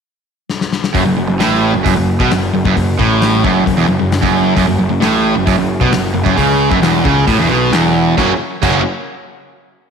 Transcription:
0.50 snare
0.61 snare
0.73 snare
0.84 snare
0.94 picked electric bass F#1, distorted electric guitar F#2, kick, open hi-hat
1.06 picked electric bass F#1, distorted electric guitar F#2
1.18 picked electric bass F#1, distorted electric guitar F#2
1.29 picked electric bass F#1, distorted electric guitar F#2
1.40 picked electric bass A1, distorted electric guitar A2, snare, open hi-hat
1.75 picked electric bass F#1, distorted electric guitar F#2
1.86 picked electric bass F#1, distorted electric guitar F#2, kick, open hi-hat
1.97 picked electric bass F#1, distorted electric guitar F#2
2.20 picked electric bass B1, distorted electric guitar B2, kick, snare
2.31 picked electric bass F#1, distorted electric guitar F#2, snare, open hi-hat
2.53 picked electric bass F#1, distorted electric guitar F#2
2.64 picked electric bass F#1, distorted electric guitar F#2, kick
2.77 picked electric bass F#1, distorted electric guitar F#2, kick, open hi-hat
2.98 picked electric bass A1, distorted electric guitar A2, kick
3.22 snare, open hi-hat
3.44 picked electric bass F#1, distorted electric guitar F#2, kick
3.66 picked electric bass F#1, distorted electric guitar F#2, kick, open hi-hat
3.77 picked electric bass E1, distorted electric guitar E2
3.89 picked electric bass F#1, distorted electric guitar F#2
4.00 picked electric bass F#1, distorted electric guitar F#2
4.12 snare, open hi-hat
4.22 picked electric bass F#1, distorted electric guitar F#2, kick
4.56 picked electric bass F#1, distorted electric guitar F#2, kick, open hi-hat
4.67 picked electric bass F#1, distorted electric guitar F#2
4.79 picked electric bass F#1, distorted electric guitar F#2
4.90 picked electric bass F#1, distorted electric guitar F#2
5.00 picked electric bass A1, distorted electric guitar A2, snare, open hi-hat
5.35 picked electric bass F#1, distorted electric guitar F#2
5.46 picked electric bass F#1, distorted electric guitar F#2, kick, open hi-hat
5.57 picked electric bass F#1, distorted electric guitar F#2
5.81 picked electric bass B1, distorted electric guitar B2, kick
5.92 picked electric bass F#1, distorted electric guitar F#2, snare, open hi-hat
6.14 picked electric bass F#1, distorted electric guitar F#2
6.26 picked electric bass F#1, distorted electric guitar F#2, kick
6.37 picked electric bass C#2, distorted electric guitar C#3, kick, open hi-hat
6.71 picked electric bass F#1, distorted electric guitar F#2, kick
6.81 picked electric bass E1, distorted electric guitar E2, snare, open hi-hat
7.04 picked electric bass C#2, distorted electric guitar C#3, kick
7.27 picked electric bass A1, distorted electric guitar A2, kick, open hi-hat
7.38 picked electric bass E1, distorted electric guitar E2
7.49 picked electric bass B1, distorted electric guitar B2
7.72 picked electric bass E1, distorted electric guitar E2, snare, open hi-hat
8.16 picked electric bass F#1, distorted electric guitar F#2 C#3 F#3 A#3 C#4 F#4, kick, snare
8.63 picked electric bass F#1, distorted electric guitar F#2 C#3 F#3 A#3 C#4 F#4, kick, crash

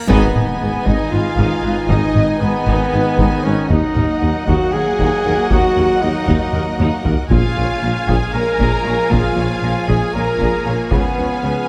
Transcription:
0.08 double bass section G#1, tuba G#1, cello section G#2, trombone section D#3 D#4, string section G#3 G#4 B4 D#5, french horn section B3, trumpet B3, viola section D#4 D#5, violin section B4 G#5, taiko, impact
0.35 double bass section G#1, tuba G#1, cello section G#2, viola section B4, taiko mid
0.61 tuba G#1, double bass section G#1, cello section G#2, viola section G#4
0.85 double bass section G#1, tuba G#1, cello section G#2, french horn section D#4, viola section D#4, trumpet D#4, violin section D#5, taiko
1.11 double bass section G#1, tuba G#1, cello section G#2, french horn section F4, trumpet F4, viola section B4, violin section F5
1.37 double bass section G#1, tuba G#1, cello section G#2, viola section D#4, taiko
1.63 double bass section G#1, tuba G#1, cello section G#2, viola section B4
1.88 double bass section G#1, tuba G#1, cello section G#2, french horn section D#4, trumpet D#4, viola section D#4, violin section D#5, taiko
2.14 double bass section G#1, tuba G#1, cello section G#2, viola section B4, taiko mid
2.40 double bass section G#1, tuba G#1, cello section G#2, trumpet B3, french horn section B3, viola section G#4, violin section B4
2.66 double bass section G#1, tuba G#1, cello section G#2, viola section D#4, taiko
2.92 double bass section G#1, tuba G#1, cello section G#2, viola section B4
3.18 double bass section G#1, tuba G#1, cello section G#2, viola section D#4, taiko
3.44 double bass section G#1, tuba G#1, cello section G#2, trumpet C#4, french horn section C#4, viola section B4, violin section C#5
3.68 double bass section D#2, tuba D#2, cello section D#2, trombone section F#3 A#3, string section A#3 F#4 A#4 D#5, trumpet D#4, viola section D#4 F#5, french horn section D#4, violin section D#5 F#5, taiko
3.95 double bass section D#2, cello section D#2, tuba D#2, viola section A#4, taiko mid
4.22 tuba D#2, double bass section D#2, cello section D#2, viola section F#4
4.47 tuba D#2, cello section D#2, double bass section D#2, viola section D#4, trumpet F#4, french horn section F#4, violin section F#5, taiko
4.72 tuba D#2, cello section D#2, double bass section D#2, french horn section G#4, trumpet G#4, viola section A#4, violin section G#5
4.99 cello section D#2, tuba D#2, double bass section D#2, viola section D#4, taiko
5.24 cello section D#2, tuba D#2, double bass section D#2, viola section A#4
5.50 tuba D#2, cello section D#2, double bass section D#2, viola section D#4, french horn section F#4, trumpet F#4, violin section F#5, taiko
5.76 tuba D#2, cello section D#2, double bass section D#2, viola section A#4
6.01 tuba D#2, cello section D#2, double bass section D#2, french horn section D#4, trumpet D#4, viola section F#4, violin section D#5
6.27 tuba D#2, cello section D#2, double bass section D#2, viola section D#4, taiko
6.54 tuba D#2, double bass section D#2, cello section D#2, viola section A#4, taiko low-mid
6.79 tuba D#2, cello section D#2, double bass section D#2, viola section D#4, taiko low-mid
7.05 cello section D#2, tuba D#2, double bass section D#2, viola section A#4, taiko low
7.30 double bass section A#1, tuba A#1, cello section A#2, timpani A#2, trombone section F3 G#3, string section A#3 F4 G#4 C#5, french horn section F4, trumpet F4, viola section G#4 F5, violin section F5 G#5, taiko
7.57 tuba A#1, double bass section A#1, cello section A#2, viola section C#5
7.82 tuba A#1, double bass section A#1, cello section A#2, viola section A#4
8.07 tuba A#1, double bass section A#1, cello section A#2, trumpet G#4, viola section G#4, french horn section G#4, violin section G#5, taiko
8.33 tuba A#1, double bass section A#1, cello section A#2, trumpet A#4, french horn section A#4, viola section C#5, violin section A#5
8.58 double bass section A#1, tuba A#1, cello section A#2, viola section G#4, taiko
8.85 double bass section A#1, tuba A#1, cello section A#2, viola section C#5
9.10 double bass section A#1, tuba A#1, cello section A#2, trumpet F4, french horn section F4, viola section G#4, violin section F5, taiko
9.36 tuba A#1, double bass section A#1, cello section A#2, viola section C#5
9.62 double bass section A#1, tuba A#1, cello section A#2, viola section A#4
9.87 double bass section A#1, tuba A#1, cello section A#2, trumpet G#4, viola section G#4, french horn section G#4, violin section G#5, taiko
10.14 double bass section A#1, tuba A#1, cello section A#2, trumpet A#4, french horn section A#4, viola section C#5, violin section A#5
10.40 double bass section A#1, tuba A#1, cello section A#2, viola section G#4, taiko
10.65 tuba A#1, double bass section A#1, cello section A#2, trumpet A#3, french horn section A#3, violin section A#4, viola section C#5
10.90 tuba C#2, double bass section C#2, cello section C#3, trombone section F3 G#3, trumpet B3, french horn section B3, string section C#4, viola section F4 F5, violin section B4 G#5, taiko
11.17 tuba C#2, double bass section C#2, cello section C#3, viola section C#5
11.43 tuba C#2, double bass section C#2, cello section C#3, viola section G#4

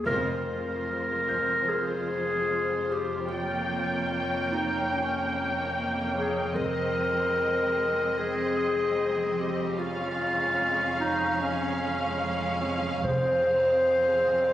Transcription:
0.06 double bass section F1, sub bass F1, cello section F2, viola section G#3 F4, clarinet A#4, violin section C5, taiko
1.28 grand piano G6, taiko
1.69 clarinet G#4
2.91 clarinet G4
3.30 viola section A#3 G5, clarinet F4, violin section C#5
4.53 clarinet D#4
4.93 clarinet C#4
6.15 clarinet G#4
6.55 sub bass F1, double bass section F1, cello section F2, viola section G#3 C4, clarinet A#4, violin section D#5, taiko
8.18 clarinet G#4
8.57 grand piano D#6
9.40 clarinet G4
9.79 viola section C#4, clarinet F4, violin section F5
11.00 clarinet D#4
11.41 clarinet C#4
13.03 double bass section F1, sub bass F1, cello section F2, viola section C4 G#4, clarinet C5, violin section F5, taiko
14.26 taiko

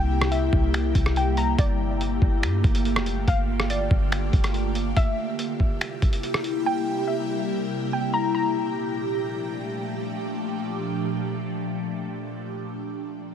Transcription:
Already playing: 808-style bass C2, ambient pad C3 G3 A#3 E4 G4, synth pluck G5
0.21 cross-stick
0.32 synth pluck E5, closed hi-hat
0.53 808-style bass C2, kick
0.74 finger snap, closed hi-hat
0.95 808-style bass C2, kick, closed hi-hat
1.06 cross-stick
1.16 synth pluck G5, closed hi-hat
1.37 synth pluck A#5, closed hi-hat
1.58 808-style bass G1, ambient pad D3 A3 F4, synth pluck D5, kick, closed hi-hat
2.01 closed hi-hat
2.22 808-style bass G1, kick
2.43 808-style bass G2, finger snap, closed hi-hat
2.64 808-style bass G1, kick, closed hi-hat
2.75 closed hi-hat
2.85 closed hi-hat
2.96 808-style bass F1, cross-stick
3.06 closed hi-hat
3.12 808-style bass G1
3.28 808-style bass G1, synth pluck F5, kick, closed hi-hat
3.60 cross-stick
3.70 synth pluck D5, closed hi-hat
3.91 808-style bass G1, kick
4.12 finger snap, closed hi-hat
4.33 808-style bass G1, kick, closed hi-hat
4.44 cross-stick, closed hi-hat
4.54 closed hi-hat
4.75 closed hi-hat
4.97 ambient pad C3 G3 A#3 E4 G4, synth pluck E5, kick, closed hi-hat
5.39 closed hi-hat
5.60 kick
5.81 finger snap, closed hi-hat
6.02 kick, closed hi-hat
6.13 closed hi-hat
6.23 closed hi-hat
6.34 cross-stick
6.44 closed hi-hat
6.66 synth pluck G5
7.07 synth pluck E5
7.93 synth pluck G5
8.14 synth pluck A#5
8.35 ambient pad A#2 F3 A3 D4 G4, synth pluck A#5

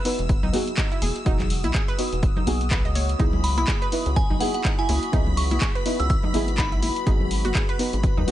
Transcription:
Already playing: ambient pad F#4 D#6, string machine E6
0.04 synth stab B3 D#4 F#4 B4, open hi-hat
0.19 analog synth bass E1, closed hi-hat
0.29 kick, closed hi-hat
0.43 analog synth bass B1, synth arpeggio sound D#4, low conga
0.52 synth stab B3 D#4 F#4 G#4, open hi-hat, high conga
0.67 closed hi-hat
0.77 synth arpeggio sound D#4, kick, clap, closed hi-hat
0.91 synth arpeggio sound E4, closed hi-hat
1.02 analog synth bass E1, synth arpeggio sound G#4, open hi-hat, high conga
1.16 closed hi-hat
1.25 analog synth bass E1, synth stab B3 D#4 F#4 G#4, synth arpeggio sound D#4, kick, closed hi-hat
1.39 clap, closed hi-hat, low conga
1.50 open hi-hat
1.64 analog synth bass B1, synth arpeggio sound E4, closed hi-hat, high conga
1.74 synth arpeggio sound G#4, kick, clap, closed hi-hat
1.88 synth arpeggio sound B4, closed hi-hat
1.98 synth stab B3 D#4 F#4 B4, open hi-hat
2.12 analog synth bass E1, closed hi-hat
2.23 kick, closed hi-hat
2.36 synth arpeggio sound D#4, low conga
2.46 analog synth bass B1, synth stab B3 D#4 F#4 G#4, open hi-hat, high conga
2.61 closed hi-hat
2.71 synth arpeggio sound B4, kick, clap, closed hi-hat
2.85 analog synth bass C#2, synth arpeggio sound D#5, closed hi-hat
2.95 synth arpeggio sound C#5, open hi-hat, high conga
3.09 closed hi-hat
3.18 analog synth bass C#2, synth stab B3 D#4 E4 G#4, synth arpeggio sound D#4, string machine B5, kick, closed hi-hat
3.33 low conga
3.44 synth bell B5, open hi-hat
3.57 analog synth bass B1, synth arpeggio sound E4, synth bell B5, closed hi-hat, high conga
3.68 synth arpeggio sound G#4, kick, clap, closed hi-hat
3.72 ambient pad B4
3.82 synth arpeggio sound B4, closed hi-hat
3.92 synth stab B3 D#4 E4 B4, open hi-hat
4.06 analog synth bass C#2, closed hi-hat
4.16 synth bell G#5, kick, closed hi-hat
4.30 analog synth bass G#1, synth arpeggio sound D#4, low conga
4.39 synth stab B3 D#4 E4 G#4, synth bell F#5, open hi-hat, high conga
4.54 synth bell F#5, closed hi-hat
4.64 synth arpeggio sound D#4, kick, clap, closed hi-hat
4.79 synth arpeggio sound E4, synth bell G#5, closed hi-hat
4.89 analog synth bass C#2, synth arpeggio sound E4, open hi-hat, high conga
5.03 closed hi-hat
5.12 analog synth bass C#2, synth stab B3 D#4 E4 G#4, synth arpeggio sound D#4, kick, closed hi-hat
5.27 low conga
5.37 synth bell C#6, open hi-hat
5.51 analog synth bass B1, synth arpeggio sound E4, closed hi-hat, high conga
5.61 synth arpeggio sound G#4, kick, clap, closed hi-hat
5.75 synth arpeggio sound B4, closed hi-hat
5.85 synth stab B3 D#4 E4 B4, open hi-hat
6.00 analog synth bass C#2, synth bell E6, closed hi-hat
6.10 synth bell E6, kick, closed hi-hat
6.23 synth arpeggio sound D#4, low conga
6.33 analog synth bass G#1, synth stab B3 D#4 E4 G#4, open hi-hat, high conga
6.48 closed hi-hat
6.58 synth arpeggio sound D#4, synth bell B5, kick, clap, closed hi-hat
6.72 synth arpeggio sound E4, closed hi-hat
6.82 synth arpeggio sound E4, open hi-hat, high conga
6.96 closed hi-hat
7.05 analog synth bass G#1, synth stab B3 D#4 F#4 G#4, synth arpeggio sound D#4, kick, closed hi-hat
7.20 low conga
7.31 open hi-hat
7.45 analog synth bass F#1, synth arpeggio sound F#4, closed hi-hat, high conga
7.55 synth arpeggio sound G#4, kick, clap, closed hi-hat
7.69 synth arpeggio sound B4, closed hi-hat
7.79 synth stab B3 D#4 F#4 B4, open hi-hat
7.93 analog synth bass G#1, closed hi-hat
8.03 kick, closed hi-hat
8.17 analog synth bass D#2, synth arpeggio sound D#4, low conga
8.26 synth stab B3 D#4 F#4, open hi-hat, high conga

